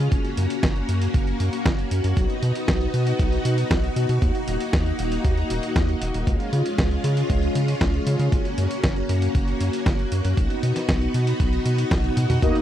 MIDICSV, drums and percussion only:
0, 0, Header, 1, 2, 480
1, 0, Start_track
1, 0, Tempo, 512821
1, 110, Time_signature, 4, 2, 24, 8
1, 11809, End_track
2, 0, Start_track
2, 0, Title_t, "Drums"
2, 110, Note_on_c, 9, 36, 117
2, 110, Note_on_c, 9, 42, 52
2, 204, Note_off_c, 9, 36, 0
2, 204, Note_off_c, 9, 42, 0
2, 230, Note_on_c, 9, 42, 27
2, 324, Note_off_c, 9, 42, 0
2, 350, Note_on_c, 9, 42, 97
2, 444, Note_off_c, 9, 42, 0
2, 470, Note_on_c, 9, 42, 52
2, 564, Note_off_c, 9, 42, 0
2, 590, Note_on_c, 9, 36, 122
2, 591, Note_on_c, 9, 38, 123
2, 591, Note_on_c, 9, 42, 53
2, 683, Note_off_c, 9, 36, 0
2, 685, Note_off_c, 9, 38, 0
2, 685, Note_off_c, 9, 42, 0
2, 710, Note_on_c, 9, 42, 27
2, 804, Note_off_c, 9, 42, 0
2, 831, Note_on_c, 9, 42, 89
2, 924, Note_off_c, 9, 42, 0
2, 950, Note_on_c, 9, 42, 55
2, 1044, Note_off_c, 9, 42, 0
2, 1070, Note_on_c, 9, 36, 120
2, 1070, Note_on_c, 9, 42, 53
2, 1163, Note_off_c, 9, 36, 0
2, 1164, Note_off_c, 9, 42, 0
2, 1190, Note_on_c, 9, 42, 27
2, 1284, Note_off_c, 9, 42, 0
2, 1311, Note_on_c, 9, 42, 93
2, 1404, Note_off_c, 9, 42, 0
2, 1431, Note_on_c, 9, 42, 53
2, 1525, Note_off_c, 9, 42, 0
2, 1550, Note_on_c, 9, 36, 122
2, 1550, Note_on_c, 9, 38, 122
2, 1550, Note_on_c, 9, 42, 52
2, 1643, Note_off_c, 9, 36, 0
2, 1644, Note_off_c, 9, 38, 0
2, 1644, Note_off_c, 9, 42, 0
2, 1671, Note_on_c, 9, 42, 27
2, 1764, Note_off_c, 9, 42, 0
2, 1790, Note_on_c, 9, 42, 95
2, 1884, Note_off_c, 9, 42, 0
2, 1911, Note_on_c, 9, 42, 55
2, 2004, Note_off_c, 9, 42, 0
2, 2030, Note_on_c, 9, 36, 117
2, 2031, Note_on_c, 9, 42, 54
2, 2123, Note_off_c, 9, 36, 0
2, 2125, Note_off_c, 9, 42, 0
2, 2151, Note_on_c, 9, 42, 28
2, 2244, Note_off_c, 9, 42, 0
2, 2271, Note_on_c, 9, 42, 90
2, 2364, Note_off_c, 9, 42, 0
2, 2391, Note_on_c, 9, 42, 50
2, 2484, Note_off_c, 9, 42, 0
2, 2510, Note_on_c, 9, 36, 117
2, 2510, Note_on_c, 9, 38, 121
2, 2510, Note_on_c, 9, 42, 50
2, 2603, Note_off_c, 9, 36, 0
2, 2604, Note_off_c, 9, 38, 0
2, 2604, Note_off_c, 9, 42, 0
2, 2631, Note_on_c, 9, 42, 25
2, 2724, Note_off_c, 9, 42, 0
2, 2750, Note_on_c, 9, 42, 88
2, 2844, Note_off_c, 9, 42, 0
2, 2870, Note_on_c, 9, 42, 52
2, 2964, Note_off_c, 9, 42, 0
2, 2990, Note_on_c, 9, 36, 120
2, 2990, Note_on_c, 9, 42, 51
2, 3084, Note_off_c, 9, 36, 0
2, 3084, Note_off_c, 9, 42, 0
2, 3110, Note_on_c, 9, 42, 27
2, 3204, Note_off_c, 9, 42, 0
2, 3230, Note_on_c, 9, 42, 89
2, 3324, Note_off_c, 9, 42, 0
2, 3350, Note_on_c, 9, 42, 52
2, 3443, Note_off_c, 9, 42, 0
2, 3470, Note_on_c, 9, 36, 125
2, 3470, Note_on_c, 9, 38, 123
2, 3470, Note_on_c, 9, 42, 49
2, 3564, Note_off_c, 9, 36, 0
2, 3564, Note_off_c, 9, 38, 0
2, 3564, Note_off_c, 9, 42, 0
2, 3590, Note_on_c, 9, 42, 25
2, 3684, Note_off_c, 9, 42, 0
2, 3710, Note_on_c, 9, 42, 89
2, 3804, Note_off_c, 9, 42, 0
2, 3830, Note_on_c, 9, 42, 51
2, 3924, Note_off_c, 9, 42, 0
2, 3950, Note_on_c, 9, 36, 114
2, 3950, Note_on_c, 9, 42, 50
2, 4044, Note_off_c, 9, 36, 0
2, 4044, Note_off_c, 9, 42, 0
2, 4070, Note_on_c, 9, 42, 26
2, 4164, Note_off_c, 9, 42, 0
2, 4190, Note_on_c, 9, 42, 88
2, 4284, Note_off_c, 9, 42, 0
2, 4310, Note_on_c, 9, 42, 50
2, 4403, Note_off_c, 9, 42, 0
2, 4430, Note_on_c, 9, 36, 117
2, 4430, Note_on_c, 9, 38, 118
2, 4430, Note_on_c, 9, 42, 50
2, 4523, Note_off_c, 9, 36, 0
2, 4524, Note_off_c, 9, 38, 0
2, 4524, Note_off_c, 9, 42, 0
2, 4550, Note_on_c, 9, 42, 24
2, 4643, Note_off_c, 9, 42, 0
2, 4670, Note_on_c, 9, 42, 86
2, 4763, Note_off_c, 9, 42, 0
2, 4790, Note_on_c, 9, 42, 50
2, 4884, Note_off_c, 9, 42, 0
2, 4910, Note_on_c, 9, 36, 113
2, 4910, Note_on_c, 9, 42, 50
2, 5003, Note_off_c, 9, 36, 0
2, 5004, Note_off_c, 9, 42, 0
2, 5031, Note_on_c, 9, 42, 25
2, 5124, Note_off_c, 9, 42, 0
2, 5150, Note_on_c, 9, 42, 86
2, 5244, Note_off_c, 9, 42, 0
2, 5270, Note_on_c, 9, 42, 50
2, 5364, Note_off_c, 9, 42, 0
2, 5390, Note_on_c, 9, 36, 120
2, 5390, Note_on_c, 9, 38, 115
2, 5390, Note_on_c, 9, 42, 49
2, 5483, Note_off_c, 9, 36, 0
2, 5484, Note_off_c, 9, 38, 0
2, 5484, Note_off_c, 9, 42, 0
2, 5510, Note_on_c, 9, 42, 25
2, 5604, Note_off_c, 9, 42, 0
2, 5631, Note_on_c, 9, 42, 84
2, 5724, Note_off_c, 9, 42, 0
2, 5751, Note_on_c, 9, 42, 50
2, 5844, Note_off_c, 9, 42, 0
2, 5870, Note_on_c, 9, 36, 105
2, 5871, Note_on_c, 9, 42, 48
2, 5963, Note_off_c, 9, 36, 0
2, 5964, Note_off_c, 9, 42, 0
2, 5990, Note_on_c, 9, 42, 27
2, 6084, Note_off_c, 9, 42, 0
2, 6110, Note_on_c, 9, 42, 87
2, 6204, Note_off_c, 9, 42, 0
2, 6230, Note_on_c, 9, 42, 50
2, 6324, Note_off_c, 9, 42, 0
2, 6350, Note_on_c, 9, 36, 113
2, 6350, Note_on_c, 9, 38, 114
2, 6350, Note_on_c, 9, 42, 48
2, 6444, Note_off_c, 9, 36, 0
2, 6444, Note_off_c, 9, 38, 0
2, 6444, Note_off_c, 9, 42, 0
2, 6470, Note_on_c, 9, 42, 24
2, 6564, Note_off_c, 9, 42, 0
2, 6590, Note_on_c, 9, 42, 84
2, 6684, Note_off_c, 9, 42, 0
2, 6711, Note_on_c, 9, 42, 50
2, 6804, Note_off_c, 9, 42, 0
2, 6830, Note_on_c, 9, 36, 107
2, 6830, Note_on_c, 9, 42, 50
2, 6924, Note_off_c, 9, 36, 0
2, 6924, Note_off_c, 9, 42, 0
2, 6951, Note_on_c, 9, 42, 25
2, 7045, Note_off_c, 9, 42, 0
2, 7070, Note_on_c, 9, 42, 82
2, 7164, Note_off_c, 9, 42, 0
2, 7191, Note_on_c, 9, 42, 49
2, 7285, Note_off_c, 9, 42, 0
2, 7310, Note_on_c, 9, 36, 116
2, 7310, Note_on_c, 9, 38, 109
2, 7310, Note_on_c, 9, 42, 49
2, 7404, Note_off_c, 9, 36, 0
2, 7404, Note_off_c, 9, 38, 0
2, 7404, Note_off_c, 9, 42, 0
2, 7430, Note_on_c, 9, 42, 24
2, 7524, Note_off_c, 9, 42, 0
2, 7550, Note_on_c, 9, 42, 87
2, 7644, Note_off_c, 9, 42, 0
2, 7671, Note_on_c, 9, 42, 48
2, 7764, Note_off_c, 9, 42, 0
2, 7790, Note_on_c, 9, 36, 107
2, 7790, Note_on_c, 9, 42, 54
2, 7884, Note_off_c, 9, 36, 0
2, 7884, Note_off_c, 9, 42, 0
2, 7910, Note_on_c, 9, 42, 27
2, 8004, Note_off_c, 9, 42, 0
2, 8029, Note_on_c, 9, 42, 89
2, 8123, Note_off_c, 9, 42, 0
2, 8150, Note_on_c, 9, 42, 50
2, 8244, Note_off_c, 9, 42, 0
2, 8270, Note_on_c, 9, 36, 107
2, 8270, Note_on_c, 9, 38, 112
2, 8270, Note_on_c, 9, 42, 50
2, 8364, Note_off_c, 9, 36, 0
2, 8364, Note_off_c, 9, 38, 0
2, 8364, Note_off_c, 9, 42, 0
2, 8391, Note_on_c, 9, 42, 25
2, 8484, Note_off_c, 9, 42, 0
2, 8511, Note_on_c, 9, 42, 82
2, 8604, Note_off_c, 9, 42, 0
2, 8631, Note_on_c, 9, 42, 51
2, 8724, Note_off_c, 9, 42, 0
2, 8750, Note_on_c, 9, 36, 103
2, 8750, Note_on_c, 9, 42, 49
2, 8844, Note_off_c, 9, 36, 0
2, 8844, Note_off_c, 9, 42, 0
2, 8870, Note_on_c, 9, 42, 25
2, 8964, Note_off_c, 9, 42, 0
2, 8991, Note_on_c, 9, 42, 87
2, 9084, Note_off_c, 9, 42, 0
2, 9110, Note_on_c, 9, 42, 51
2, 9204, Note_off_c, 9, 42, 0
2, 9230, Note_on_c, 9, 36, 115
2, 9231, Note_on_c, 9, 38, 107
2, 9231, Note_on_c, 9, 42, 49
2, 9324, Note_off_c, 9, 36, 0
2, 9324, Note_off_c, 9, 38, 0
2, 9324, Note_off_c, 9, 42, 0
2, 9351, Note_on_c, 9, 42, 26
2, 9444, Note_off_c, 9, 42, 0
2, 9471, Note_on_c, 9, 42, 90
2, 9564, Note_off_c, 9, 42, 0
2, 9590, Note_on_c, 9, 42, 50
2, 9684, Note_off_c, 9, 42, 0
2, 9710, Note_on_c, 9, 36, 109
2, 9710, Note_on_c, 9, 42, 54
2, 9804, Note_off_c, 9, 36, 0
2, 9804, Note_off_c, 9, 42, 0
2, 9830, Note_on_c, 9, 42, 28
2, 9924, Note_off_c, 9, 42, 0
2, 9950, Note_on_c, 9, 42, 94
2, 10044, Note_off_c, 9, 42, 0
2, 10070, Note_on_c, 9, 38, 33
2, 10070, Note_on_c, 9, 42, 50
2, 10164, Note_off_c, 9, 38, 0
2, 10164, Note_off_c, 9, 42, 0
2, 10190, Note_on_c, 9, 36, 112
2, 10190, Note_on_c, 9, 38, 117
2, 10190, Note_on_c, 9, 42, 53
2, 10283, Note_off_c, 9, 36, 0
2, 10284, Note_off_c, 9, 38, 0
2, 10284, Note_off_c, 9, 42, 0
2, 10310, Note_on_c, 9, 42, 26
2, 10404, Note_off_c, 9, 42, 0
2, 10430, Note_on_c, 9, 42, 88
2, 10524, Note_off_c, 9, 42, 0
2, 10550, Note_on_c, 9, 42, 53
2, 10644, Note_off_c, 9, 42, 0
2, 10670, Note_on_c, 9, 36, 108
2, 10670, Note_on_c, 9, 42, 54
2, 10763, Note_off_c, 9, 36, 0
2, 10764, Note_off_c, 9, 42, 0
2, 10790, Note_on_c, 9, 42, 26
2, 10884, Note_off_c, 9, 42, 0
2, 10910, Note_on_c, 9, 42, 93
2, 11004, Note_off_c, 9, 42, 0
2, 11030, Note_on_c, 9, 42, 52
2, 11124, Note_off_c, 9, 42, 0
2, 11150, Note_on_c, 9, 36, 115
2, 11150, Note_on_c, 9, 38, 108
2, 11150, Note_on_c, 9, 42, 51
2, 11243, Note_off_c, 9, 36, 0
2, 11244, Note_off_c, 9, 38, 0
2, 11244, Note_off_c, 9, 42, 0
2, 11270, Note_on_c, 9, 42, 27
2, 11270, Note_on_c, 9, 48, 52
2, 11364, Note_off_c, 9, 42, 0
2, 11364, Note_off_c, 9, 48, 0
2, 11391, Note_on_c, 9, 42, 94
2, 11391, Note_on_c, 9, 47, 77
2, 11484, Note_off_c, 9, 42, 0
2, 11484, Note_off_c, 9, 47, 0
2, 11511, Note_on_c, 9, 42, 50
2, 11511, Note_on_c, 9, 45, 79
2, 11604, Note_off_c, 9, 42, 0
2, 11604, Note_off_c, 9, 45, 0
2, 11629, Note_on_c, 9, 36, 117
2, 11631, Note_on_c, 9, 42, 56
2, 11723, Note_off_c, 9, 36, 0
2, 11724, Note_off_c, 9, 42, 0
2, 11750, Note_on_c, 9, 42, 29
2, 11809, Note_off_c, 9, 42, 0
2, 11809, End_track
0, 0, End_of_file